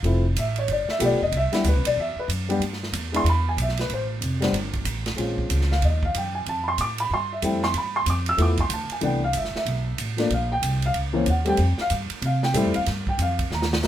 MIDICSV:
0, 0, Header, 1, 5, 480
1, 0, Start_track
1, 0, Key_signature, 0, "major"
1, 0, Tempo, 320342
1, 73, Time_signature, 4, 2, 24, 8
1, 20789, End_track
2, 0, Start_track
2, 0, Title_t, "Upright piano"
2, 0, Program_c, 0, 0
2, 50, Note_on_c, 0, 53, 67
2, 66, Note_on_c, 0, 57, 58
2, 71, Note_on_c, 0, 60, 61
2, 85, Note_on_c, 0, 64, 62
2, 331, Note_off_c, 0, 53, 0
2, 339, Note_off_c, 0, 57, 0
2, 341, Note_off_c, 0, 60, 0
2, 348, Note_off_c, 0, 64, 0
2, 583, Note_on_c, 0, 76, 85
2, 859, Note_off_c, 0, 76, 0
2, 874, Note_on_c, 0, 73, 85
2, 1040, Note_off_c, 0, 73, 0
2, 1076, Note_on_c, 0, 74, 76
2, 1346, Note_off_c, 0, 74, 0
2, 1355, Note_on_c, 0, 76, 99
2, 1481, Note_on_c, 0, 53, 68
2, 1493, Note_on_c, 0, 57, 71
2, 1504, Note_on_c, 0, 59, 67
2, 1515, Note_on_c, 0, 67, 83
2, 1521, Note_off_c, 0, 76, 0
2, 1571, Note_on_c, 0, 74, 87
2, 1767, Note_off_c, 0, 53, 0
2, 1774, Note_off_c, 0, 57, 0
2, 1779, Note_off_c, 0, 59, 0
2, 1785, Note_off_c, 0, 67, 0
2, 1834, Note_off_c, 0, 74, 0
2, 1839, Note_on_c, 0, 75, 95
2, 2003, Note_off_c, 0, 75, 0
2, 2051, Note_on_c, 0, 76, 100
2, 2281, Note_on_c, 0, 55, 67
2, 2283, Note_on_c, 0, 59, 66
2, 2290, Note_on_c, 0, 62, 62
2, 2301, Note_on_c, 0, 64, 79
2, 2315, Note_off_c, 0, 76, 0
2, 2346, Note_on_c, 0, 67, 66
2, 2451, Note_off_c, 0, 55, 0
2, 2452, Note_off_c, 0, 59, 0
2, 2456, Note_off_c, 0, 62, 0
2, 2462, Note_off_c, 0, 64, 0
2, 2497, Note_off_c, 0, 67, 0
2, 2520, Note_on_c, 0, 71, 85
2, 2790, Note_off_c, 0, 71, 0
2, 2791, Note_on_c, 0, 74, 94
2, 2960, Note_off_c, 0, 74, 0
2, 2999, Note_on_c, 0, 76, 86
2, 3269, Note_off_c, 0, 76, 0
2, 3288, Note_on_c, 0, 71, 84
2, 3387, Note_off_c, 0, 71, 0
2, 3725, Note_on_c, 0, 55, 78
2, 3732, Note_on_c, 0, 59, 69
2, 3742, Note_on_c, 0, 62, 69
2, 3752, Note_on_c, 0, 67, 85
2, 3895, Note_off_c, 0, 55, 0
2, 3898, Note_off_c, 0, 59, 0
2, 3903, Note_off_c, 0, 62, 0
2, 3908, Note_off_c, 0, 67, 0
2, 4679, Note_on_c, 0, 56, 74
2, 4691, Note_on_c, 0, 59, 63
2, 4701, Note_on_c, 0, 62, 65
2, 4711, Note_on_c, 0, 64, 76
2, 4739, Note_on_c, 0, 84, 97
2, 4853, Note_off_c, 0, 56, 0
2, 4858, Note_off_c, 0, 59, 0
2, 4863, Note_off_c, 0, 62, 0
2, 4868, Note_off_c, 0, 64, 0
2, 4896, Note_off_c, 0, 84, 0
2, 4936, Note_on_c, 0, 83, 93
2, 5199, Note_off_c, 0, 83, 0
2, 5226, Note_on_c, 0, 80, 91
2, 5380, Note_off_c, 0, 80, 0
2, 5420, Note_on_c, 0, 76, 80
2, 5682, Note_off_c, 0, 76, 0
2, 5699, Note_on_c, 0, 71, 81
2, 5856, Note_off_c, 0, 71, 0
2, 5898, Note_on_c, 0, 72, 81
2, 6061, Note_off_c, 0, 72, 0
2, 6600, Note_on_c, 0, 55, 76
2, 6613, Note_on_c, 0, 59, 68
2, 6622, Note_on_c, 0, 60, 74
2, 6631, Note_on_c, 0, 62, 76
2, 6774, Note_off_c, 0, 55, 0
2, 6781, Note_off_c, 0, 59, 0
2, 6785, Note_off_c, 0, 60, 0
2, 6790, Note_off_c, 0, 62, 0
2, 7734, Note_on_c, 0, 56, 59
2, 7745, Note_on_c, 0, 60, 49
2, 7757, Note_on_c, 0, 61, 50
2, 7767, Note_on_c, 0, 65, 69
2, 8469, Note_off_c, 0, 56, 0
2, 8474, Note_off_c, 0, 60, 0
2, 8480, Note_off_c, 0, 61, 0
2, 8485, Note_off_c, 0, 65, 0
2, 8563, Note_on_c, 0, 77, 88
2, 8729, Note_off_c, 0, 77, 0
2, 8758, Note_on_c, 0, 75, 71
2, 9032, Note_off_c, 0, 75, 0
2, 9064, Note_on_c, 0, 77, 86
2, 9220, Note_off_c, 0, 77, 0
2, 9246, Note_on_c, 0, 79, 79
2, 9513, Note_on_c, 0, 80, 81
2, 9516, Note_off_c, 0, 79, 0
2, 9684, Note_off_c, 0, 80, 0
2, 9725, Note_on_c, 0, 81, 89
2, 9942, Note_on_c, 0, 83, 64
2, 9967, Note_off_c, 0, 83, 0
2, 9995, Note_off_c, 0, 81, 0
2, 10009, Note_on_c, 0, 84, 99
2, 10172, Note_off_c, 0, 84, 0
2, 10201, Note_on_c, 0, 86, 99
2, 10473, Note_off_c, 0, 86, 0
2, 10491, Note_on_c, 0, 83, 94
2, 10653, Note_off_c, 0, 83, 0
2, 10692, Note_on_c, 0, 84, 99
2, 10958, Note_off_c, 0, 84, 0
2, 10978, Note_on_c, 0, 76, 71
2, 11121, Note_on_c, 0, 55, 65
2, 11128, Note_on_c, 0, 57, 57
2, 11137, Note_off_c, 0, 76, 0
2, 11140, Note_on_c, 0, 60, 67
2, 11149, Note_on_c, 0, 64, 77
2, 11152, Note_on_c, 0, 79, 75
2, 11391, Note_off_c, 0, 55, 0
2, 11395, Note_off_c, 0, 57, 0
2, 11401, Note_off_c, 0, 60, 0
2, 11405, Note_off_c, 0, 64, 0
2, 11428, Note_off_c, 0, 79, 0
2, 11443, Note_on_c, 0, 84, 100
2, 11609, Note_off_c, 0, 84, 0
2, 11654, Note_on_c, 0, 83, 83
2, 11919, Note_off_c, 0, 83, 0
2, 11928, Note_on_c, 0, 84, 101
2, 12091, Note_off_c, 0, 84, 0
2, 12134, Note_on_c, 0, 86, 83
2, 12399, Note_off_c, 0, 86, 0
2, 12422, Note_on_c, 0, 88, 116
2, 12536, Note_on_c, 0, 53, 66
2, 12551, Note_on_c, 0, 57, 64
2, 12560, Note_on_c, 0, 59, 63
2, 12566, Note_on_c, 0, 64, 72
2, 12578, Note_off_c, 0, 88, 0
2, 12617, Note_on_c, 0, 86, 81
2, 12818, Note_off_c, 0, 53, 0
2, 12826, Note_off_c, 0, 57, 0
2, 12830, Note_off_c, 0, 59, 0
2, 12833, Note_off_c, 0, 64, 0
2, 12880, Note_off_c, 0, 86, 0
2, 12893, Note_on_c, 0, 84, 84
2, 13053, Note_off_c, 0, 84, 0
2, 13089, Note_on_c, 0, 81, 71
2, 13356, Note_off_c, 0, 81, 0
2, 13369, Note_on_c, 0, 80, 80
2, 13499, Note_on_c, 0, 52, 63
2, 13502, Note_on_c, 0, 57, 58
2, 13519, Note_on_c, 0, 59, 65
2, 13527, Note_on_c, 0, 62, 74
2, 13531, Note_off_c, 0, 80, 0
2, 13558, Note_on_c, 0, 79, 79
2, 13779, Note_off_c, 0, 52, 0
2, 13781, Note_off_c, 0, 57, 0
2, 13789, Note_off_c, 0, 59, 0
2, 13793, Note_off_c, 0, 62, 0
2, 13830, Note_off_c, 0, 79, 0
2, 13848, Note_on_c, 0, 77, 94
2, 14010, Note_off_c, 0, 77, 0
2, 14041, Note_on_c, 0, 76, 83
2, 14312, Note_off_c, 0, 76, 0
2, 14338, Note_on_c, 0, 76, 81
2, 14934, Note_off_c, 0, 76, 0
2, 15236, Note_on_c, 0, 53, 73
2, 15250, Note_on_c, 0, 57, 64
2, 15256, Note_on_c, 0, 58, 67
2, 15270, Note_on_c, 0, 62, 82
2, 15411, Note_off_c, 0, 53, 0
2, 15417, Note_off_c, 0, 57, 0
2, 15421, Note_off_c, 0, 58, 0
2, 15428, Note_off_c, 0, 62, 0
2, 15484, Note_on_c, 0, 77, 78
2, 15752, Note_off_c, 0, 77, 0
2, 15764, Note_on_c, 0, 79, 104
2, 16198, Note_off_c, 0, 79, 0
2, 16268, Note_on_c, 0, 77, 99
2, 16420, Note_off_c, 0, 77, 0
2, 16677, Note_on_c, 0, 52, 79
2, 16680, Note_on_c, 0, 58, 75
2, 16694, Note_on_c, 0, 60, 74
2, 16698, Note_on_c, 0, 61, 81
2, 16851, Note_off_c, 0, 52, 0
2, 16852, Note_off_c, 0, 58, 0
2, 16858, Note_off_c, 0, 60, 0
2, 16861, Note_off_c, 0, 61, 0
2, 16930, Note_on_c, 0, 78, 75
2, 17154, Note_on_c, 0, 55, 71
2, 17169, Note_on_c, 0, 57, 72
2, 17172, Note_on_c, 0, 60, 72
2, 17187, Note_on_c, 0, 67, 91
2, 17195, Note_off_c, 0, 78, 0
2, 17215, Note_on_c, 0, 79, 99
2, 17329, Note_off_c, 0, 55, 0
2, 17336, Note_off_c, 0, 57, 0
2, 17338, Note_off_c, 0, 60, 0
2, 17345, Note_off_c, 0, 67, 0
2, 17643, Note_off_c, 0, 79, 0
2, 17696, Note_on_c, 0, 77, 104
2, 17853, Note_off_c, 0, 77, 0
2, 18366, Note_on_c, 0, 77, 84
2, 18632, Note_off_c, 0, 77, 0
2, 18632, Note_on_c, 0, 79, 102
2, 18785, Note_on_c, 0, 55, 81
2, 18798, Note_on_c, 0, 57, 81
2, 18805, Note_on_c, 0, 60, 74
2, 18817, Note_on_c, 0, 64, 88
2, 19060, Note_off_c, 0, 55, 0
2, 19066, Note_off_c, 0, 57, 0
2, 19070, Note_off_c, 0, 60, 0
2, 19071, Note_off_c, 0, 79, 0
2, 19076, Note_off_c, 0, 64, 0
2, 19105, Note_on_c, 0, 77, 93
2, 19211, Note_off_c, 0, 77, 0
2, 19610, Note_on_c, 0, 79, 89
2, 19769, Note_off_c, 0, 79, 0
2, 19806, Note_on_c, 0, 77, 92
2, 20229, Note_off_c, 0, 77, 0
2, 20291, Note_on_c, 0, 82, 81
2, 20454, Note_off_c, 0, 82, 0
2, 20725, Note_on_c, 0, 53, 74
2, 20728, Note_on_c, 0, 58, 74
2, 20737, Note_on_c, 0, 59, 73
2, 20789, Note_off_c, 0, 53, 0
2, 20789, Note_off_c, 0, 58, 0
2, 20789, Note_off_c, 0, 59, 0
2, 20789, End_track
3, 0, Start_track
3, 0, Title_t, "Upright bass"
3, 0, Program_c, 1, 32
3, 41, Note_on_c, 1, 29, 86
3, 523, Note_off_c, 1, 29, 0
3, 535, Note_on_c, 1, 33, 91
3, 1010, Note_off_c, 1, 33, 0
3, 1024, Note_on_c, 1, 31, 82
3, 1307, Note_off_c, 1, 31, 0
3, 1498, Note_on_c, 1, 35, 91
3, 1658, Note_on_c, 1, 31, 60
3, 1680, Note_off_c, 1, 35, 0
3, 1817, Note_off_c, 1, 31, 0
3, 1826, Note_on_c, 1, 29, 63
3, 1964, Note_off_c, 1, 29, 0
3, 1973, Note_on_c, 1, 36, 94
3, 2262, Note_off_c, 1, 36, 0
3, 2458, Note_on_c, 1, 38, 96
3, 2624, Note_off_c, 1, 38, 0
3, 2624, Note_on_c, 1, 36, 64
3, 2766, Note_off_c, 1, 36, 0
3, 2775, Note_on_c, 1, 35, 68
3, 2929, Note_off_c, 1, 35, 0
3, 2938, Note_on_c, 1, 40, 86
3, 3225, Note_off_c, 1, 40, 0
3, 3417, Note_on_c, 1, 42, 91
3, 3884, Note_off_c, 1, 42, 0
3, 3893, Note_on_c, 1, 43, 87
3, 4372, Note_off_c, 1, 43, 0
3, 4380, Note_on_c, 1, 40, 93
3, 4844, Note_off_c, 1, 40, 0
3, 4853, Note_on_c, 1, 40, 90
3, 5333, Note_off_c, 1, 40, 0
3, 5346, Note_on_c, 1, 35, 90
3, 5820, Note_off_c, 1, 35, 0
3, 5832, Note_on_c, 1, 33, 83
3, 6296, Note_off_c, 1, 33, 0
3, 6305, Note_on_c, 1, 29, 84
3, 6771, Note_off_c, 1, 29, 0
3, 6780, Note_on_c, 1, 31, 85
3, 7250, Note_off_c, 1, 31, 0
3, 7259, Note_on_c, 1, 33, 90
3, 7733, Note_off_c, 1, 33, 0
3, 7742, Note_on_c, 1, 34, 79
3, 8219, Note_off_c, 1, 34, 0
3, 8236, Note_on_c, 1, 37, 92
3, 8706, Note_off_c, 1, 37, 0
3, 8715, Note_on_c, 1, 39, 92
3, 9185, Note_off_c, 1, 39, 0
3, 9214, Note_on_c, 1, 42, 88
3, 9667, Note_off_c, 1, 42, 0
3, 9676, Note_on_c, 1, 41, 84
3, 10146, Note_off_c, 1, 41, 0
3, 10160, Note_on_c, 1, 45, 89
3, 10628, Note_off_c, 1, 45, 0
3, 10647, Note_on_c, 1, 43, 84
3, 11111, Note_off_c, 1, 43, 0
3, 11120, Note_on_c, 1, 41, 92
3, 11587, Note_off_c, 1, 41, 0
3, 11598, Note_on_c, 1, 43, 84
3, 12066, Note_off_c, 1, 43, 0
3, 12077, Note_on_c, 1, 41, 101
3, 12545, Note_off_c, 1, 41, 0
3, 12552, Note_on_c, 1, 40, 89
3, 13018, Note_off_c, 1, 40, 0
3, 13027, Note_on_c, 1, 38, 92
3, 13312, Note_off_c, 1, 38, 0
3, 13508, Note_on_c, 1, 36, 86
3, 13980, Note_off_c, 1, 36, 0
3, 13988, Note_on_c, 1, 31, 90
3, 14272, Note_off_c, 1, 31, 0
3, 14465, Note_on_c, 1, 35, 89
3, 14938, Note_off_c, 1, 35, 0
3, 14963, Note_on_c, 1, 33, 82
3, 15427, Note_off_c, 1, 33, 0
3, 15438, Note_on_c, 1, 34, 89
3, 15904, Note_off_c, 1, 34, 0
3, 15915, Note_on_c, 1, 36, 90
3, 16382, Note_off_c, 1, 36, 0
3, 16399, Note_on_c, 1, 37, 80
3, 16864, Note_off_c, 1, 37, 0
3, 16880, Note_on_c, 1, 39, 85
3, 17345, Note_off_c, 1, 39, 0
3, 17354, Note_on_c, 1, 41, 98
3, 17633, Note_off_c, 1, 41, 0
3, 17837, Note_on_c, 1, 43, 100
3, 18115, Note_off_c, 1, 43, 0
3, 18304, Note_on_c, 1, 48, 95
3, 18776, Note_off_c, 1, 48, 0
3, 18792, Note_on_c, 1, 45, 89
3, 18954, Note_off_c, 1, 45, 0
3, 18954, Note_on_c, 1, 41, 66
3, 19116, Note_off_c, 1, 41, 0
3, 19130, Note_on_c, 1, 40, 70
3, 19273, Note_off_c, 1, 40, 0
3, 19280, Note_on_c, 1, 43, 93
3, 19740, Note_off_c, 1, 43, 0
3, 19749, Note_on_c, 1, 41, 91
3, 20218, Note_off_c, 1, 41, 0
3, 20236, Note_on_c, 1, 39, 89
3, 20701, Note_off_c, 1, 39, 0
3, 20722, Note_on_c, 1, 37, 91
3, 20789, Note_off_c, 1, 37, 0
3, 20789, End_track
4, 0, Start_track
4, 0, Title_t, "Muted upright bass strokes"
4, 1322, Note_on_c, 9, 29, 40
4, 1471, Note_off_c, 9, 29, 0
4, 3232, Note_on_c, 9, 29, 41
4, 3382, Note_off_c, 9, 29, 0
4, 13332, Note_on_c, 9, 29, 40
4, 13482, Note_off_c, 9, 29, 0
4, 14289, Note_on_c, 9, 29, 44
4, 14439, Note_off_c, 9, 29, 0
4, 17657, Note_on_c, 9, 29, 40
4, 17807, Note_off_c, 9, 29, 0
4, 18131, Note_on_c, 9, 29, 43
4, 18281, Note_off_c, 9, 29, 0
4, 20789, End_track
5, 0, Start_track
5, 0, Title_t, "Drums"
5, 61, Note_on_c, 9, 51, 57
5, 211, Note_off_c, 9, 51, 0
5, 546, Note_on_c, 9, 44, 58
5, 546, Note_on_c, 9, 51, 77
5, 696, Note_off_c, 9, 44, 0
5, 696, Note_off_c, 9, 51, 0
5, 835, Note_on_c, 9, 51, 53
5, 985, Note_off_c, 9, 51, 0
5, 1019, Note_on_c, 9, 51, 64
5, 1168, Note_off_c, 9, 51, 0
5, 1329, Note_on_c, 9, 38, 45
5, 1479, Note_off_c, 9, 38, 0
5, 1501, Note_on_c, 9, 44, 52
5, 1501, Note_on_c, 9, 51, 85
5, 1651, Note_off_c, 9, 44, 0
5, 1651, Note_off_c, 9, 51, 0
5, 1983, Note_on_c, 9, 51, 63
5, 2133, Note_off_c, 9, 51, 0
5, 2286, Note_on_c, 9, 51, 51
5, 2294, Note_on_c, 9, 38, 59
5, 2436, Note_off_c, 9, 51, 0
5, 2444, Note_off_c, 9, 38, 0
5, 2463, Note_on_c, 9, 44, 59
5, 2463, Note_on_c, 9, 51, 72
5, 2613, Note_off_c, 9, 44, 0
5, 2613, Note_off_c, 9, 51, 0
5, 2773, Note_on_c, 9, 51, 84
5, 2923, Note_off_c, 9, 51, 0
5, 3440, Note_on_c, 9, 44, 59
5, 3440, Note_on_c, 9, 51, 83
5, 3590, Note_off_c, 9, 44, 0
5, 3590, Note_off_c, 9, 51, 0
5, 3744, Note_on_c, 9, 51, 53
5, 3894, Note_off_c, 9, 51, 0
5, 3920, Note_on_c, 9, 51, 63
5, 4070, Note_off_c, 9, 51, 0
5, 4090, Note_on_c, 9, 38, 32
5, 4240, Note_off_c, 9, 38, 0
5, 4246, Note_on_c, 9, 38, 42
5, 4396, Note_off_c, 9, 38, 0
5, 4396, Note_on_c, 9, 44, 57
5, 4396, Note_on_c, 9, 51, 77
5, 4546, Note_off_c, 9, 44, 0
5, 4546, Note_off_c, 9, 51, 0
5, 4709, Note_on_c, 9, 51, 56
5, 4859, Note_off_c, 9, 51, 0
5, 4887, Note_on_c, 9, 51, 64
5, 5037, Note_off_c, 9, 51, 0
5, 5366, Note_on_c, 9, 44, 66
5, 5366, Note_on_c, 9, 51, 80
5, 5516, Note_off_c, 9, 44, 0
5, 5516, Note_off_c, 9, 51, 0
5, 5525, Note_on_c, 9, 38, 29
5, 5655, Note_on_c, 9, 51, 54
5, 5675, Note_off_c, 9, 38, 0
5, 5685, Note_on_c, 9, 38, 54
5, 5805, Note_off_c, 9, 51, 0
5, 5835, Note_off_c, 9, 38, 0
5, 5838, Note_on_c, 9, 51, 56
5, 5988, Note_off_c, 9, 51, 0
5, 6321, Note_on_c, 9, 44, 70
5, 6321, Note_on_c, 9, 51, 76
5, 6471, Note_off_c, 9, 44, 0
5, 6471, Note_off_c, 9, 51, 0
5, 6623, Note_on_c, 9, 51, 53
5, 6631, Note_on_c, 9, 38, 69
5, 6773, Note_off_c, 9, 51, 0
5, 6781, Note_off_c, 9, 38, 0
5, 6802, Note_on_c, 9, 51, 67
5, 6952, Note_off_c, 9, 51, 0
5, 7093, Note_on_c, 9, 51, 48
5, 7099, Note_on_c, 9, 36, 50
5, 7243, Note_off_c, 9, 51, 0
5, 7249, Note_off_c, 9, 36, 0
5, 7271, Note_on_c, 9, 44, 65
5, 7271, Note_on_c, 9, 51, 75
5, 7420, Note_off_c, 9, 44, 0
5, 7420, Note_off_c, 9, 51, 0
5, 7579, Note_on_c, 9, 51, 52
5, 7586, Note_on_c, 9, 38, 59
5, 7729, Note_off_c, 9, 51, 0
5, 7736, Note_off_c, 9, 38, 0
5, 7762, Note_on_c, 9, 51, 62
5, 7912, Note_off_c, 9, 51, 0
5, 8064, Note_on_c, 9, 36, 45
5, 8213, Note_off_c, 9, 36, 0
5, 8238, Note_on_c, 9, 44, 55
5, 8238, Note_on_c, 9, 51, 81
5, 8388, Note_off_c, 9, 44, 0
5, 8388, Note_off_c, 9, 51, 0
5, 8408, Note_on_c, 9, 38, 35
5, 8558, Note_off_c, 9, 38, 0
5, 8571, Note_on_c, 9, 38, 50
5, 8721, Note_off_c, 9, 38, 0
5, 8721, Note_on_c, 9, 51, 59
5, 8871, Note_off_c, 9, 51, 0
5, 9030, Note_on_c, 9, 36, 56
5, 9180, Note_off_c, 9, 36, 0
5, 9208, Note_on_c, 9, 44, 56
5, 9208, Note_on_c, 9, 51, 73
5, 9358, Note_off_c, 9, 44, 0
5, 9358, Note_off_c, 9, 51, 0
5, 9685, Note_on_c, 9, 51, 58
5, 9835, Note_off_c, 9, 51, 0
5, 10159, Note_on_c, 9, 44, 57
5, 10159, Note_on_c, 9, 51, 75
5, 10309, Note_off_c, 9, 44, 0
5, 10309, Note_off_c, 9, 51, 0
5, 10461, Note_on_c, 9, 51, 72
5, 10611, Note_off_c, 9, 51, 0
5, 11121, Note_on_c, 9, 44, 65
5, 11121, Note_on_c, 9, 51, 73
5, 11271, Note_off_c, 9, 44, 0
5, 11271, Note_off_c, 9, 51, 0
5, 11429, Note_on_c, 9, 38, 53
5, 11578, Note_off_c, 9, 38, 0
5, 11595, Note_on_c, 9, 51, 67
5, 11745, Note_off_c, 9, 51, 0
5, 12080, Note_on_c, 9, 44, 69
5, 12080, Note_on_c, 9, 51, 78
5, 12230, Note_off_c, 9, 44, 0
5, 12230, Note_off_c, 9, 51, 0
5, 12378, Note_on_c, 9, 51, 56
5, 12528, Note_off_c, 9, 51, 0
5, 12561, Note_on_c, 9, 51, 68
5, 12711, Note_off_c, 9, 51, 0
5, 12848, Note_on_c, 9, 51, 52
5, 12861, Note_on_c, 9, 36, 55
5, 12998, Note_off_c, 9, 51, 0
5, 13011, Note_off_c, 9, 36, 0
5, 13032, Note_on_c, 9, 44, 74
5, 13032, Note_on_c, 9, 51, 80
5, 13182, Note_off_c, 9, 44, 0
5, 13182, Note_off_c, 9, 51, 0
5, 13329, Note_on_c, 9, 51, 53
5, 13479, Note_off_c, 9, 51, 0
5, 13503, Note_on_c, 9, 51, 62
5, 13653, Note_off_c, 9, 51, 0
5, 13982, Note_on_c, 9, 44, 65
5, 13982, Note_on_c, 9, 51, 72
5, 14132, Note_off_c, 9, 44, 0
5, 14132, Note_off_c, 9, 51, 0
5, 14155, Note_on_c, 9, 38, 33
5, 14304, Note_off_c, 9, 38, 0
5, 14321, Note_on_c, 9, 38, 50
5, 14470, Note_off_c, 9, 38, 0
5, 14480, Note_on_c, 9, 51, 64
5, 14630, Note_off_c, 9, 51, 0
5, 14957, Note_on_c, 9, 44, 56
5, 14957, Note_on_c, 9, 51, 80
5, 15107, Note_off_c, 9, 44, 0
5, 15107, Note_off_c, 9, 51, 0
5, 15256, Note_on_c, 9, 51, 54
5, 15263, Note_on_c, 9, 38, 38
5, 15406, Note_off_c, 9, 51, 0
5, 15413, Note_off_c, 9, 38, 0
5, 15440, Note_on_c, 9, 51, 59
5, 15590, Note_off_c, 9, 51, 0
5, 15923, Note_on_c, 9, 44, 63
5, 15923, Note_on_c, 9, 51, 89
5, 16073, Note_off_c, 9, 44, 0
5, 16073, Note_off_c, 9, 51, 0
5, 16217, Note_on_c, 9, 51, 54
5, 16367, Note_off_c, 9, 51, 0
5, 16394, Note_on_c, 9, 51, 63
5, 16543, Note_off_c, 9, 51, 0
5, 16872, Note_on_c, 9, 44, 57
5, 16872, Note_on_c, 9, 51, 70
5, 17021, Note_off_c, 9, 44, 0
5, 17021, Note_off_c, 9, 51, 0
5, 17165, Note_on_c, 9, 51, 54
5, 17315, Note_off_c, 9, 51, 0
5, 17339, Note_on_c, 9, 51, 64
5, 17489, Note_off_c, 9, 51, 0
5, 17651, Note_on_c, 9, 38, 45
5, 17800, Note_off_c, 9, 38, 0
5, 17828, Note_on_c, 9, 44, 74
5, 17828, Note_on_c, 9, 51, 79
5, 17978, Note_off_c, 9, 44, 0
5, 17978, Note_off_c, 9, 51, 0
5, 18127, Note_on_c, 9, 51, 59
5, 18277, Note_off_c, 9, 51, 0
5, 18314, Note_on_c, 9, 51, 66
5, 18464, Note_off_c, 9, 51, 0
5, 18627, Note_on_c, 9, 38, 65
5, 18777, Note_off_c, 9, 38, 0
5, 18794, Note_on_c, 9, 44, 66
5, 18794, Note_on_c, 9, 51, 84
5, 18944, Note_off_c, 9, 44, 0
5, 18944, Note_off_c, 9, 51, 0
5, 19091, Note_on_c, 9, 51, 54
5, 19241, Note_off_c, 9, 51, 0
5, 19274, Note_on_c, 9, 51, 69
5, 19282, Note_on_c, 9, 38, 38
5, 19424, Note_off_c, 9, 51, 0
5, 19432, Note_off_c, 9, 38, 0
5, 19582, Note_on_c, 9, 36, 58
5, 19732, Note_off_c, 9, 36, 0
5, 19759, Note_on_c, 9, 44, 71
5, 19759, Note_on_c, 9, 51, 72
5, 19909, Note_off_c, 9, 44, 0
5, 19909, Note_off_c, 9, 51, 0
5, 20062, Note_on_c, 9, 51, 56
5, 20066, Note_on_c, 9, 36, 55
5, 20211, Note_off_c, 9, 51, 0
5, 20215, Note_off_c, 9, 36, 0
5, 20253, Note_on_c, 9, 38, 53
5, 20402, Note_off_c, 9, 38, 0
5, 20413, Note_on_c, 9, 38, 75
5, 20563, Note_off_c, 9, 38, 0
5, 20574, Note_on_c, 9, 38, 95
5, 20720, Note_on_c, 9, 44, 63
5, 20724, Note_off_c, 9, 38, 0
5, 20727, Note_on_c, 9, 38, 66
5, 20789, Note_off_c, 9, 38, 0
5, 20789, Note_off_c, 9, 44, 0
5, 20789, End_track
0, 0, End_of_file